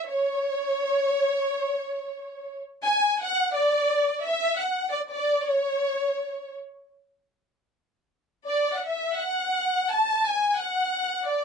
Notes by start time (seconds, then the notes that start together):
0.08 C#5
2.85 G#5
3.23 F#5
3.54 D5
4.23 E5
4.58 F#5
4.91 D5
5.10 D5
5.46 C#5
8.48 D5
8.75 F#5
8.87 E5
9.16 F#5
9.89 A5
10.25 G#5
10.56 F#5
11.27 D5